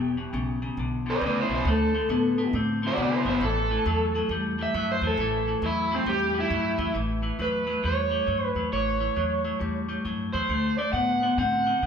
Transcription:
Already playing: upright bass E1, clean electric guitar E2 B2
0.17 clean electric guitar E2 B2
0.33 upright bass B1, clean electric guitar E2 C#3
0.62 clean electric guitar E2 C#3
0.77 upright bass B1, clean electric guitar E2 D3
1.06 clean electric guitar E2 D3
1.10 overdriven electric guitar B4 D5
1.21 upright bass D2, clean electric guitar E2 C#3
1.26 overdriven electric guitar B4 D5
1.40 overdriven electric guitar E4 C5
1.49 upright bass B1, clean electric guitar E2 C#3
1.55 overdriven electric guitar E4 C5
1.65 upright bass D2, clean electric guitar D3 A3
1.70 overdriven electric guitar A4
1.94 clean electric guitar D3 A3
2.09 upright bass A2, clean electric guitar D3 B3
2.38 clean electric guitar D3 B3
2.53 upright bass A2, clean electric guitar D3 C4
2.82 clean electric guitar D3 C4
2.87 overdriven electric guitar F#4 D5
2.98 upright bass C3, clean electric guitar D3 B3
3.02 overdriven electric guitar F#4 D5
3.15 overdriven electric guitar E4 C5
3.25 upright bass G1, clean electric guitar D3 B3
3.29 overdriven electric guitar E4 C5
3.41 upright bass A1, clean electric guitar A2 E3, overdriven electric guitar A4
3.70 clean electric guitar A2 E3
3.86 upright bass E2, clean electric guitar A2 F#3
4.15 clean electric guitar A2 F#3
4.29 upright bass E2, clean electric guitar A2 G3
4.58 clean electric guitar A2 G3
4.63 overdriven electric guitar E5
4.74 upright bass G2, clean electric guitar A2 F#3
4.92 overdriven electric guitar C5
5.01 upright bass E2, clean electric guitar A2 F#3
5.07 overdriven electric guitar A4
5.17 upright bass A1, clean electric guitar A2 E3
5.47 clean electric guitar A2 E3
5.62 upright bass E2, clean electric guitar A2 F#3, overdriven electric guitar E4
5.91 clean electric guitar A2 F#3
5.95 overdriven electric guitar C4
6.06 upright bass E2, clean electric guitar A2 G3, overdriven electric guitar G4
6.34 clean electric guitar A2 G3
6.40 overdriven electric guitar E4
6.50 upright bass G2, clean electric guitar A2 F#3
6.78 upright bass E2, clean electric guitar A2 F#3
6.94 upright bass A1, clean electric guitar A2 E3
7.22 clean electric guitar A2 E3
7.39 upright bass E2, clean electric guitar A2 F#3, overdriven electric guitar B4
7.67 clean electric guitar A2 F#3
7.83 upright bass E2, clean electric guitar A2 G3, overdriven electric guitar C#5
8.10 clean electric guitar A2 G3
8.27 upright bass G2, clean electric guitar A2 F#3
8.45 overdriven electric guitar B4
8.55 upright bass E2, clean electric guitar A2 F#3
8.72 upright bass A1, clean electric guitar A2 E3, overdriven electric guitar C#5
9.00 clean electric guitar A2 E3
9.16 upright bass E2, clean electric guitar A2 F#3
9.45 clean electric guitar A2 F#3
9.60 upright bass E2, clean electric guitar A2 G3
9.89 clean electric guitar A2 G3
10.05 upright bass G2, clean electric guitar A2 F#3
10.33 upright bass E2, clean electric guitar A2 F#3, overdriven electric guitar C5
10.49 upright bass D2, clean electric guitar D3 A3
10.78 clean electric guitar D3 A3, overdriven electric guitar D5
10.93 upright bass A2, clean electric guitar D3 B3, overdriven electric guitar F#5
11.23 clean electric guitar D3 B3
11.38 upright bass A2, clean electric guitar D3 C4, overdriven electric guitar F#5
11.66 clean electric guitar D3 C4
11.82 upright bass C3, clean electric guitar D3 B3

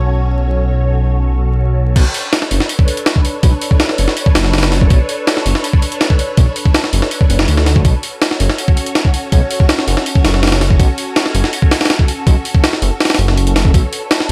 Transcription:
Already playing: detuned saw bass B1, string machine C#4 F#4 A4 C#5
1.96 detuned saw bass B1, string machine D4 A4 B4 C#5, kick, open hi-hat, crash
2.14 open hi-hat
2.33 snare, open hi-hat
2.42 snare
2.51 detuned saw bass F#1, open hi-hat
2.60 snare
2.69 open hi-hat
2.79 kick
2.88 open hi-hat
2.97 closed hi-hat
3.06 snare, open hi-hat
3.16 kick
3.25 open hi-hat
3.43 detuned saw bass B1, kick, open hi-hat
3.61 open hi-hat
3.71 kick
3.80 snare, open hi-hat
3.89 snare
3.98 detuned saw bass F#1, open hi-hat
4.08 snare
4.17 open hi-hat
4.26 kick
4.35 detuned saw bass F#1, snare, open hi-hat
4.44 snare
4.54 snare, open hi-hat
4.58 snare, open hi-hat
4.63 snare, open hi-hat
4.72 snare, open hi-hat
4.81 kick
4.90 detuned saw bass B1, kick, open hi-hat
5.09 open hi-hat
5.27 snare, open hi-hat
5.37 snare
5.46 detuned saw bass F#1, open hi-hat
5.55 snare
5.64 open hi-hat
5.73 kick
5.82 open hi-hat
5.92 closed hi-hat
6.01 snare, open hi-hat
6.10 kick
6.19 open hi-hat
6.37 detuned saw bass B1, kick, open hi-hat
6.56 open hi-hat
6.65 kick
6.74 snare, open hi-hat
6.84 snare
6.93 detuned saw bass F#1, open hi-hat
7.02 snare
7.11 open hi-hat
7.21 kick
7.30 detuned saw bass F#1, open hi-hat
7.39 snare
7.48 detuned saw bass D2, open hi-hat
7.57 snare
7.66 snare, open hi-hat
7.76 kick
7.85 detuned saw bass B1, string machine C#4 F#4 A4 C#5, kick, open hi-hat
8.03 open hi-hat
8.22 snare, open hi-hat
8.31 snare
8.40 detuned saw bass F#1, open hi-hat
8.49 snare
8.58 open hi-hat
8.68 kick
8.77 open hi-hat
8.86 closed hi-hat
8.95 snare, open hi-hat
9.05 kick
9.14 open hi-hat
9.32 detuned saw bass B1, kick, open hi-hat
9.51 open hi-hat
9.60 kick
9.69 snare, open hi-hat
9.79 snare
9.88 detuned saw bass F#1, open hi-hat
9.97 snare
10.06 open hi-hat
10.15 kick
10.24 detuned saw bass F#1, snare, open hi-hat
10.34 snare
10.43 snare, open hi-hat
10.47 snare, open hi-hat
10.52 snare, open hi-hat
10.61 snare, open hi-hat
10.70 kick
10.79 detuned saw bass B1, kick, open hi-hat
10.98 open hi-hat
11.16 snare, open hi-hat
11.26 snare
11.35 detuned saw bass F#1, open hi-hat
11.44 snare
11.53 open hi-hat
11.62 kick
11.71 snare, open hi-hat
11.81 snare, open hi-hat
11.85 snare, open hi-hat
11.90 snare, open hi-hat
11.99 kick
12.08 open hi-hat
12.27 detuned saw bass B1, kick, open hi-hat
12.45 open hi-hat
12.54 kick
12.64 snare, open hi-hat
12.73 snare
12.82 detuned saw bass F#1, open hi-hat
13.01 snare, open hi-hat
13.05 snare, open hi-hat
13.10 snare, open hi-hat
13.15 detuned saw bass F#1, snare, open hi-hat
13.19 open hi-hat
13.28 snare
13.38 open hi-hat
13.47 closed hi-hat
13.56 snare, open hi-hat
13.65 kick
13.74 detuned saw bass B1, string machine D4 B4 C#5, kick, open hi-hat
13.93 open hi-hat
14.11 snare, open hi-hat
14.20 snare

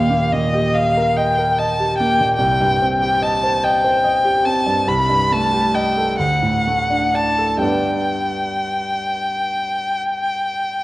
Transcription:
Already playing: grand piano D#2 A#2 A#3 G4 A#4 D#5, violin F5
0.10 grand piano A#3
0.32 grand piano A#2, violin D#5
0.54 grand piano G4
0.74 grand piano D#5, violin F5
0.97 grand piano A#4
1.17 grand piano D#5, violin G5
1.39 grand piano A#4
1.59 grand piano D#5, violin A5
1.79 grand piano G4
1.98 grand piano A#3, violin G5
2.21 grand piano A#2
2.37 grand piano C2, violin G5
2.61 grand piano G2
2.82 grand piano C4
3.02 grand piano G4
3.22 grand piano D#5, violin A5
3.44 grand piano C5
3.64 grand piano D#5, violin G5
3.84 grand piano C5
4.04 grand piano D#5
4.24 grand piano G4
4.45 grand piano C4, violin A5
4.66 grand piano G2
4.87 grand piano C2, violin B5
5.09 grand piano G2
5.32 grand piano A3, violin A5
5.53 grand piano G4
5.74 grand piano D#5, violin G5
5.97 grand piano A4
6.19 grand piano D2, violin F#5
6.42 grand piano A2
6.67 grand piano A3
6.90 grand piano D4
7.14 grand piano D5, violin A5
7.38 grand piano A4
7.58 grand piano G2 B3 D4
7.62 grand piano D5, violin G5

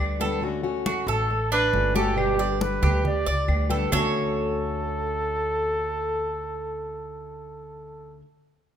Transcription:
Already playing: upright bass D2, steel-string acoustic guitar D3, cuban tres D5
0.00 steel-string acoustic guitar G3 B3 G4
0.20 steel-string acoustic guitar D3 G3 B3 G4, cuban tres A4, high conga
0.41 steel-string acoustic guitar D3 A3 C#4 F#4, high conga
0.63 steel-string acoustic guitar A3 C#4 F#4, high conga
0.86 cuban tres F#4, high conga, claves
1.07 upright bass A1, cuban tres A4, trumpet A4, high conga
1.30 muted steel-string acoustic guitar stroke, high conga
1.52 cuban tres D4, trumpet B4, high conga, claves
1.73 upright bass G1, steel-string acoustic guitar D3 A3 C#4 F#4, high conga
1.95 steel-string acoustic guitar A3 C#4 F#4, cuban tres G4, trumpet A4, high conga
2.15 steel-string acoustic guitar B2 D3 G3 B3 G4, trumpet G4, high conga, claves
2.37 steel-string acoustic guitar D3 G3 B3 G4, cuban tres D5, high conga
2.61 trumpet B4, high conga
2.82 upright bass D2, cuban tres G4, high conga, low conga, claves
3.04 trumpet D5, muted steel-string acoustic guitar stroke, high conga, low conga
3.26 upright bass C#2, cuban tres D5, high conga
3.47 upright bass D2, steel-string acoustic guitar D3 G3 B3 G4, high conga, claves
3.69 steel-string acoustic guitar D3 G3 B3 G4, cuban tres A4, high conga
3.91 upright bass D2, steel-string acoustic guitar D3 A3 C#4 F#4, cuban tres A4 C#5, trumpet A4, low conga, claves

